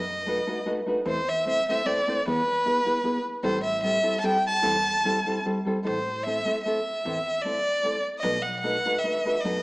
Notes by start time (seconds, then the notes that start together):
Already playing: F#2 D#5
0.26 A3 D#4 F#4 B4
0.47 A3 D#4 F#4 B4
0.66 A3 D#4 F#4 B4
0.86 A3 D#4 F#4 B4
1.05 E2 E3 A3 C4 E4 C5
1.29 E5
1.45 A3 C4 E4 C5 E5
1.69 A3 C4 E4 C5 E5
1.85 A3 C4 E4 C5 D5
2.07 A3 C4 E4 C5
2.26 E2 E3 B3 E4 G#4 B4
2.66 B3 E4 G#4 B4
2.85 B3 E4 G#4 B4
3.03 B3 E4 G#4 B4
3.43 A1 A2 E3 G3 C4 E4 A4 C5
3.63 E5
3.82 G3 C4 E4 A4 E5
4.02 G3 C4 E4 A4
4.20 G3 C4 A5
4.24 E4 A4 G5
4.47 A5
4.62 E2 A2 E3 G3 C4 E4 A4
5.05 G3 C4 E4 A4
5.25 G3 C4 E4 A4
5.45 G3 C4 E4 A4
5.65 G3 C4 E4 A4
5.84 A1 A2 E3 A3 C4 E4 A4 C5
6.23 A3 C4 A4 E5
6.28 E4
6.45 A3 C4 E4 A4
6.63 A3 C4 E4 E5
6.67 A4
7.05 E2 A2 E3 A3 C4 E4 A4
7.42 A3 C4 D5
7.46 E4 A4
7.83 A3 C4 E4 A4
8.19 D#5
8.23 B1 B2 F#3 A3 D#4 F#4 B4
8.42 F#5
8.60 A3 F#5
8.64 D#4 F#4 B4
8.85 A3 D#4 F#4 B4
8.99 E5
9.04 A3 D#4 F#4 B4
9.25 A3 D#4 F#4 B4
9.41 F#2 F#3 D#5
9.45 B2 A3 D#4 F#4 B4